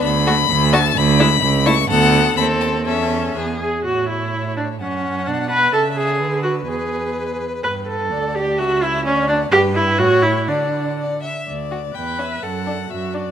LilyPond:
<<
  \new Staff \with { instrumentName = "Violin" } { \time 2/4 \key a \major \tempo 4 = 126 b''4. a''8 | b''4. cis'''8 | fis''4 b''8 a''8 | e''4 r4 |
e''2 | a''2~ | a''2 | gis''4. r8 |
\key d \major g''4 fis''4 | a''4 fis''4 | g''4 g''4 | fis''4. r8 |
d''4 g''8 e''8 | fis''4 e''8 d''8 | }
  \new Staff \with { instrumentName = "Violin" } { \time 2/4 \key a \major r8 fis'8 r8 fis'8 | r8 e'8 r8 e'8 | a'4 a'4 | a'4 gis'8 r8 |
cis''2 | fis''2 | e''4 b'4~ | b'2~ |
\key d \major b'4 d''4 | e''4 d''4 | b'4 cis''4 | d''4 d''8 e''8 |
r8 fis'8 r8 cis'8 | r8 d'8 r8 d'8 | }
  \new Staff \with { instrumentName = "Viola" } { \time 2/4 \key a \major r8 a8 r8 a8 | r8 gis8 r8 a8 | b4 c'4 | cis'4 b8 gis'8 |
fis'8 e'4 d'8 | cis'4 d'8 b'8 | a'8 gis'4 fis'8 | gis'4. r8 |
\key d \major b'8 a'4 g'8 | fis'8 e'8 cis'8 d'8 | g'8 e'8 fis'8 e'8 | d'4 r4 |
r4 b'4 | a'4 fis'4 | }
  \new Staff \with { instrumentName = "Cello" } { \clef bass \time 2/4 \key a \major d,4 d,4 | d,4 cis,4 | d,4 dis,4 | e,4 e,8 r8 |
a,2 | fis,4 b,4 | cis4 d4 | e,4. r8 |
\key d \major g,4 d,4 | cis,4 d,4 | g,4 a,4 | d4. r8 |
d,4 e,4 | fis,4 fis,4 | }
>>